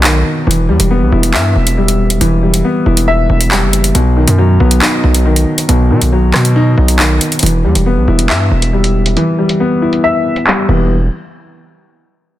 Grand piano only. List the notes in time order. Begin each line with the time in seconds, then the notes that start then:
Already playing: B2 D#3 F#3 B3 D#4
0.04 D#3
0.47 E3
0.69 G3
0.91 B3
1.12 E4
1.34 E5
1.78 G3
2.21 E3
2.43 G3
2.65 B3
2.86 E4
3.08 E5
3.51 G3
3.95 B2
4.17 D#3
4.38 F#3
4.60 B3
4.82 D#4
5.26 D#3
5.69 B2
5.91 D#3
6.12 F#3
6.34 B3
6.56 D#4
6.99 D#3
7.43 E3
7.64 G3
7.86 B3
8.08 E4
8.30 E5
8.73 G3
9.17 E3
9.39 G3
9.60 B3
9.82 E4
10.04 E5
10.47 G3
10.69 E3 G3 B3 E4